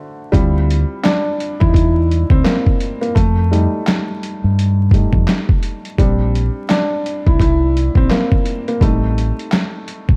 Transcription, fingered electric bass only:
0.33 0.83 D2 loud
1.61 2.23 E2 medium
2.30 2.43 D2 medium
3.16 3.66 F2 loud
4.44 5.05 G2 medium
5.13 5.25 F2 medium
5.99 6.48 A#1 loud
7.27 7.88 C2 medium
7.95 8.08 A#1 medium
8.81 9.31 A1 loud
10.09 10.16 A#1 medium

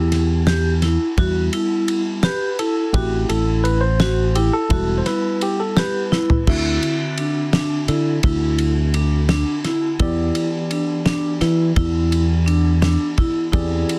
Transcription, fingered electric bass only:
0.00 0.97 E2 medium
1.18 1.48 E2 loud
2.94 3.24 A1 loud
3.30 4.49 A1 medium
4.70 5.01 E1 loud
6.47 6.77 D2 loud
7.88 8.18 D3 medium
8.24 9.43 D2 medium
10.00 10.30 E2 medium
11.41 11.71 E3 medium
11.76 12.96 E2 loud
13.53 13.83 E2 medium

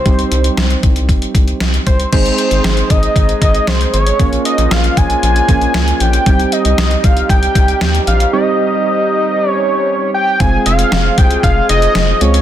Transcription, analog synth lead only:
0.00 0.83 C5 medium
1.87 2.11 C5 medium
2.12 2.37 C5 medium
2.38 2.92 C5 medium
2.90 3.41 D#5 loud
3.42 3.69 D#5 loud
3.68 3.93 C5 medium
3.94 4.42 C#5 loud
4.45 4.73 D#5 medium
4.71 4.99 F5 loud
4.97 6.02 G#5 loud
6.01 6.54 G5 loud
6.52 7.05 D#5 loud
7.04 7.29 F5 loud
7.30 8.03 G5 loud
8.07 8.31 F5 loud
8.33 9.49 D#5 medium
9.49 10.10 C#5 medium
10.14 10.42 G5 loud
10.40 10.66 G#5 loud
10.66 11.19 F5 loud
11.18 11.43 G5 loud
11.44 11.68 F5 loud
11.70 12.23 D#5 loud
12.21 12.42 C#5 loud

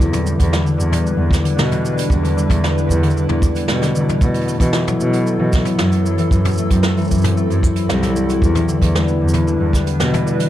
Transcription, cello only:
0.00 0.32 E2 medium
0.40 0.48 E2 loud
0.78 1.11 E2 medium
1.18 1.27 E2 medium
1.57 1.90 B2 medium
2.10 2.43 E2 medium
2.49 2.58 E2 loud
2.89 3.22 E2 loud
3.29 3.38 E2 medium
3.69 4.01 B2 medium
4.21 4.53 B2 medium
4.59 4.69 B2 loud
5.00 5.33 B2 medium
5.40 5.48 B2 medium
5.79 6.11 F#2 medium
6.31 6.64 F#2 medium
6.71 6.80 F#2 medium
7.11 7.43 F#2 medium
7.49 7.58 F#2 medium
7.88 8.21 C2 medium
8.42 8.74 E2 loud
8.82 8.90 E2 loud
9.20 9.53 E2 medium
9.60 9.69 E2 medium
10.00 10.33 B2 medium

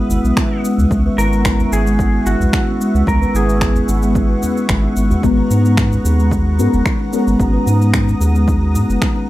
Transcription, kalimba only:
0.10 0.24 E4 medium
0.24 0.36 G#3 medium
0.37 0.51 E4 medium
0.51 0.63 C#4 medium
0.64 0.77 G#3 medium
0.79 0.86 G#3 medium
0.92 1.05 C#4 medium
1.06 1.18 B4 loud
1.19 1.32 E4 medium
1.33 1.44 G#3 medium
1.45 1.59 E4 medium
1.60 1.72 C#4 medium
1.73 1.85 G#4 medium
1.86 1.94 G#3 medium
1.99 2.12 E4 medium
2.14 2.25 F#4 medium
2.26 2.40 E4 medium
2.41 2.52 G#3 medium
2.54 2.67 E4 medium
2.68 2.80 C#4 loud
2.80 2.93 G#3 loud
2.94 3.02 G#3 medium
3.21 3.34 B4 medium
3.34 3.48 E4 medium
3.48 3.60 G#3 medium
3.75 3.87 C#4 medium
3.88 4.01 G#4 medium
4.02 4.10 G#3 medium
4.15 4.28 E4 medium
4.30 4.41 F#4 medium
4.42 4.55 C#4 loud
4.56 4.68 C#4 medium
4.69 4.82 G#3 medium
4.83 4.95 D#4 medium
4.96 5.10 G#3 medium
5.10 5.22 F#4 medium
5.23 5.37 C#4 medium
5.37 5.50 B4 medium
5.50 5.64 D#4 medium
5.64 5.76 G#3 medium
5.91 6.04 C#4 medium
6.04 6.17 G#4 medium
6.19 6.26 G#3 medium
6.31 6.44 D#4 medium
6.45 6.57 F#4 medium
6.58 6.72 D#4 medium
6.73 6.84 G#3 medium
6.99 7.12 C#4 medium
7.12 7.25 G#3 medium
7.27 7.34 G#3 medium
7.39 7.53 C#4 medium
7.53 7.66 B4 medium
7.66 7.80 D#4 medium
7.80 7.92 G#3 medium
8.08 8.20 C#4 medium
8.20 8.33 G#4 medium
8.35 8.42 G#3 loud
8.47 8.60 D#4 medium
8.61 8.73 F#4 medium
8.74 8.88 D#4 medium
8.89 9.00 G#3 medium
9.02 9.15 D#4 medium
9.16 9.28 C#4 loud

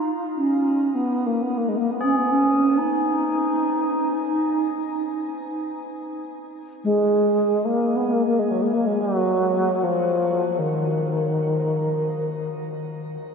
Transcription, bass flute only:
0.37 0.96 C#4 medium
0.95 1.28 B3 medium
1.26 1.44 A#3 medium
1.42 1.59 B3 medium
1.57 1.70 A#3 medium
1.69 1.79 G#3 medium
1.77 1.92 A#3 medium
1.77 1.81 B3 soft
1.91 2.05 B3 medium
2.04 2.18 C#4 medium
2.16 2.32 B3 medium
2.31 2.80 C#4 medium
2.78 5.03 D#4 medium
6.84 7.67 G#3 medium
7.65 7.98 A#3 medium
7.96 8.14 B3 medium
8.13 8.25 A#3 medium
8.26 8.41 A#3 medium
8.39 8.52 G#3 medium
8.51 8.63 F#3 medium
8.62 8.75 G#3 medium
8.73 8.88 A#3 medium
8.86 9.02 G#3 medium
9.00 9.85 F#3 medium
9.83 10.60 F3 medium
10.59 13.15 D#3 medium

